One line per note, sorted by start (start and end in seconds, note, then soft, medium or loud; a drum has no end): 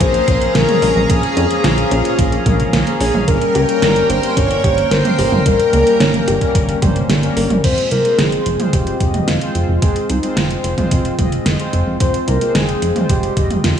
0.00 0.21 A#1 loud
0.00 0.25 F3 loud
0.00 0.25 A#3 medium
0.00 0.25 C#4 medium
0.00 7.60 C#4 medium
0.00 0.17 F4 medium
0.00 0.25 G#4 loud
0.00 3.24 G#4 medium
0.00 0.57 C5 loud
0.00 0.51 C5 loud
0.00 3.24 F5 medium
0.00 3.24 A#5 medium
0.00 kick loud
0.00 closed hi-hat medium
0.14 closed hi-hat soft
0.28 0.48 A#1 medium
0.28 0.65 F3 medium
0.28 0.65 A#3 medium
0.28 0.44 C#4 loud
0.28 0.65 C#4 medium
0.28 0.65 A#4 medium
0.28 kick loud
0.28 closed hi-hat medium
0.42 closed hi-hat soft
0.55 0.65 A#1 medium
0.55 0.65 F3 medium
0.55 1.09 A#4 loud
0.55 1.06 A#4 loud
0.55 snare loud
0.55 closed hi-hat medium
0.69 1.06 F3 medium
0.69 1.06 A#3 medium
0.69 1.06 C#4 medium
0.69 1.06 G#4 loud
0.69 closed hi-hat soft
0.69 mid tom medium
0.82 0.92 A#1 loud
0.82 0.99 G#3 medium
0.82 open hi-hat medium
0.96 1.06 A#1 medium
0.96 mid tom loud
1.09 1.20 A#1 loud
1.09 1.47 F3 medium
1.09 1.34 A#3 loud
1.09 1.47 A#3 medium
1.09 1.47 C#4 medium
1.09 1.66 G#4 loud
1.09 1.60 G#4 loud
1.09 1.47 G#4 medium
1.09 kick loud
1.09 closed hi-hat medium
1.23 closed hi-hat soft
1.37 1.47 F2 loud
1.37 1.53 C#4 medium
1.37 closed hi-hat medium
1.50 2.02 F3 loud
1.50 2.02 A#3 medium
1.50 2.02 C#4 medium
1.50 2.02 G#4 loud
1.50 closed hi-hat soft
1.64 1.85 A#1 medium
1.64 1.81 F4 medium
1.64 2.69 F4 medium
1.64 2.73 F4 medium
1.64 snare loud
1.64 closed hi-hat medium
1.78 closed hi-hat soft
1.91 2.02 A#1 loud
1.91 2.08 C#4 loud
1.91 closed hi-hat medium
2.05 2.43 F3 loud
2.05 2.43 A#3 medium
2.05 2.43 C#4 medium
2.05 2.43 G#4 loud
2.05 closed hi-hat soft
2.19 2.39 A#1 loud
2.19 2.29 F3 medium
2.19 kick loud
2.19 closed hi-hat medium
2.32 closed hi-hat soft
2.46 2.66 A#1 medium
2.46 2.84 F3 medium
2.46 2.62 G#3 medium
2.46 2.84 A#3 medium
2.46 2.84 C#4 medium
2.46 2.84 A#4 medium
2.46 kick loud
2.46 closed hi-hat medium
2.46 mid tom loud
2.60 closed hi-hat soft
2.73 2.83 A#1 medium
2.73 2.98 A#3 loud
2.73 snare loud
2.73 closed hi-hat medium
2.87 3.25 F3 medium
2.87 3.25 A#3 medium
2.87 3.25 C#4 medium
2.87 3.25 G#4 loud
2.87 closed hi-hat soft
3.00 3.11 A#1 loud
3.00 3.17 C#4 medium
3.00 3.13 G#4 medium
3.00 open hi-hat medium
3.14 3.24 A#1 medium
3.14 mid tom loud
3.28 3.38 G1 loud
3.28 3.65 G3 medium
3.28 3.65 A#3 medium
3.28 3.65 C#4 medium
3.28 7.60 A#4 medium
3.28 4.06 A#4 loud
3.28 4.11 A#4 loud
3.28 3.65 A#4 loud
3.28 3.44 A#4 medium
3.28 7.60 G5 medium
3.28 kick loud
3.28 closed hi-hat medium
3.42 closed hi-hat soft
3.55 3.65 C#2 loud
3.55 3.72 G4 loud
3.55 closed hi-hat medium
3.69 4.20 G3 medium
3.69 4.20 A#3 medium
3.69 4.20 C#4 medium
3.69 4.20 A#4 loud
3.69 closed hi-hat soft
3.82 4.03 G1 medium
3.82 3.92 G3 medium
3.82 snare loud
3.82 closed hi-hat medium
3.96 closed hi-hat soft
4.09 4.20 G1 loud
4.09 4.26 A#3 medium
4.09 4.35 C5 loud
4.09 4.38 C5 loud
4.09 closed hi-hat medium
4.23 4.61 G3 loud
4.23 4.61 A#3 medium
4.23 4.61 C#4 medium
4.23 4.61 A#4 loud
4.23 closed hi-hat soft
4.37 4.57 G1 loud
4.37 4.62 C#4 loud
4.37 4.90 C#5 loud
4.37 4.88 C#5 loud
4.37 kick loud
4.37 closed hi-hat medium
4.51 closed hi-hat soft
4.64 4.85 G1 medium
4.64 5.02 G3 medium
4.64 5.02 A#3 medium
4.64 5.02 C#4 medium
4.64 4.81 G4 medium
4.64 5.02 C5 medium
4.64 kick loud
4.64 closed hi-hat medium
4.78 closed hi-hat soft
4.91 5.02 G1 medium
4.91 5.08 A#4 medium
4.91 5.47 C5 loud
4.91 5.42 C5 loud
4.91 snare loud
4.91 closed hi-hat medium
5.05 5.43 G3 medium
5.05 5.43 A#3 medium
5.05 5.43 C#4 medium
5.05 5.43 A#4 loud
5.05 closed hi-hat soft
5.05 mid tom loud
5.19 5.29 G1 loud
5.19 5.35 G4 loud
5.19 open hi-hat medium
5.32 5.42 G1 medium
5.32 mid tom loud
5.45 5.56 G1 loud
5.45 5.56 G3 medium
5.45 5.84 G3 medium
5.45 5.84 A#3 medium
5.45 5.84 C#4 medium
5.45 7.09 A#4 loud
5.45 7.06 A#4 loud
5.45 5.84 A#4 medium
5.45 kick loud
5.45 closed hi-hat loud
5.60 closed hi-hat soft
5.73 5.83 C#2 loud
5.73 5.90 A#3 medium
5.73 closed hi-hat medium
5.87 6.38 G3 medium
5.87 6.38 A#3 medium
5.87 6.38 C#4 medium
5.87 6.38 A#4 loud
5.87 closed hi-hat soft
6.00 6.21 G1 medium
6.00 6.25 C#4 loud
6.00 snare loud
6.00 closed hi-hat loud
6.14 closed hi-hat soft
6.14 mid tom medium
6.28 6.38 G1 loud
6.28 6.44 G4 medium
6.28 closed hi-hat medium
6.41 6.79 G3 loud
6.41 6.79 A#3 medium
6.41 6.79 C#4 medium
6.41 6.79 A#4 loud
6.41 kick medium
6.41 closed hi-hat soft
6.55 6.75 G1 loud
6.55 6.71 A#4 medium
6.55 kick loud
6.55 closed hi-hat loud
6.69 closed hi-hat soft
6.82 7.03 G1 medium
6.82 7.20 G3 medium
6.82 7.20 A#3 medium
6.82 7.20 C#4 medium
6.82 6.99 G4 loud
6.82 7.20 C5 medium
6.82 kick loud
6.82 closed hi-hat medium
6.82 mid tom loud
6.96 closed hi-hat soft
7.10 7.30 G1 loud
7.10 7.19 G3 medium
7.10 snare loud
7.10 closed hi-hat medium
7.23 7.61 G3 medium
7.23 7.61 A#3 medium
7.23 7.61 C#4 medium
7.23 7.61 A#4 loud
7.23 closed hi-hat soft
7.37 7.47 G1 loud
7.37 7.53 A#3 medium
7.37 open hi-hat medium
7.50 7.61 G1 medium
7.50 closed hi-hat soft
7.50 mid tom loud
7.64 7.74 F1 loud
7.64 8.02 G#3 medium
7.64 8.02 C4 medium
7.64 8.02 F4 medium
7.64 7.89 C5 loud
7.64 8.02 C5 medium
7.64 kick loud
7.64 closed hi-hat medium
7.64 crash loud
7.78 closed hi-hat soft
7.91 8.02 C2 loud
7.91 8.20 A#4 loud
7.91 closed hi-hat medium
8.05 8.56 G#3 medium
8.05 8.56 C4 medium
8.05 8.56 F4 medium
8.05 8.56 C5 loud
8.05 closed hi-hat soft
8.18 8.39 F1 medium
8.18 8.75 G#4 loud
8.18 snare loud
8.18 closed hi-hat medium
8.32 closed hi-hat soft
8.46 8.56 F1 medium
8.46 closed hi-hat medium
8.59 8.97 G#3 medium
8.59 8.97 C4 medium
8.59 8.97 F4 medium
8.59 8.97 C5 loud
8.59 closed hi-hat soft
8.59 mid tom medium
8.73 8.94 F1 loud
8.73 9.29 G4 loud
8.73 kick loud
8.73 closed hi-hat medium
8.87 closed hi-hat soft
9.00 9.21 F1 medium
9.00 9.38 G#3 medium
9.00 9.38 C4 medium
9.00 9.38 F4 medium
9.00 9.38 D#5 medium
9.00 kick loud
9.00 closed hi-hat medium
9.14 closed hi-hat soft
9.14 mid tom medium
9.28 9.38 F1 medium
9.28 9.82 F4 loud
9.28 snare loud
9.28 closed hi-hat medium
9.41 9.79 G#3 medium
9.41 9.79 C4 medium
9.41 9.79 F4 medium
9.41 9.79 C5 loud
9.41 closed hi-hat soft
9.55 9.65 F1 loud
9.55 closed hi-hat soft
9.69 9.79 F1 medium
9.82 9.93 F1 loud
9.82 10.20 G#3 medium
9.82 10.20 C4 medium
9.82 10.20 F4 medium
9.82 10.11 G#4 loud
9.82 10.20 C5 medium
9.82 kick loud
9.82 closed hi-hat loud
9.96 closed hi-hat soft
10.10 10.20 C2 loud
10.10 10.38 D#4 medium
10.10 closed hi-hat medium
10.23 10.75 G#3 medium
10.23 10.74 C4 medium
10.23 10.74 F4 medium
10.23 10.74 C5 loud
10.23 closed hi-hat soft
10.37 10.57 F1 medium
10.37 11.46 F4 medium
10.37 snare loud
10.37 closed hi-hat medium
10.51 closed hi-hat soft
10.64 10.74 F1 medium
10.64 closed hi-hat medium
10.78 11.15 G#3 loud
10.78 11.15 C4 medium
10.78 11.15 F4 medium
10.78 11.15 C5 loud
10.78 kick medium
10.78 closed hi-hat soft
10.78 mid tom medium
10.91 11.12 F1 medium
10.91 kick loud
10.91 closed hi-hat medium
11.05 closed hi-hat soft
11.19 11.39 F1 medium
11.19 11.56 G#3 medium
11.19 11.56 C4 medium
11.19 11.56 F4 medium
11.19 11.56 D#5 medium
11.19 kick loud
11.19 closed hi-hat medium
11.19 mid tom medium
11.32 closed hi-hat soft
11.46 11.56 F1 medium
11.46 snare loud
11.46 closed hi-hat medium
11.59 11.97 G#3 medium
11.59 11.97 C4 medium
11.59 11.97 F4 medium
11.59 11.97 C5 loud
11.59 closed hi-hat soft
11.73 11.83 F1 loud
11.73 closed hi-hat soft
11.87 11.97 F1 medium
12.00 12.11 F1 loud
12.00 12.38 G#3 medium
12.00 12.38 C4 medium
12.00 12.38 F4 medium
12.00 12.38 C5 medium
12.00 12.13 C5 loud
12.00 kick loud
12.00 closed hi-hat medium
12.14 closed hi-hat soft
12.28 12.38 C2 loud
12.28 12.53 A#4 loud
12.28 closed hi-hat medium
12.41 12.93 G#3 medium
12.41 12.93 C4 medium
12.41 12.93 F4 medium
12.41 12.93 C5 loud
12.41 closed hi-hat soft
12.55 12.75 F1 medium
12.55 13.06 G#4 loud
12.55 snare loud
12.55 closed hi-hat medium
12.69 closed hi-hat soft
12.82 12.93 F1 medium
12.82 closed hi-hat medium
12.96 13.34 G#3 loud
12.96 13.34 C4 medium
12.96 13.34 F4 medium
12.96 13.34 C5 loud
12.96 closed hi-hat soft
12.96 mid tom medium
13.09 13.30 F1 medium
13.09 13.60 G4 loud
13.09 kick loud
13.09 closed hi-hat medium
13.23 closed hi-hat soft
13.37 13.57 F1 medium
13.37 13.74 G#3 medium
13.37 13.74 C4 medium
13.37 13.74 F4 medium
13.37 13.74 D#5 medium
13.37 kick loud
13.37 closed hi-hat medium
13.51 closed hi-hat soft
13.51 mid tom medium
13.64 13.74 F1 medium
13.64 13.80 F4 loud
13.64 snare loud
13.64 closed hi-hat medium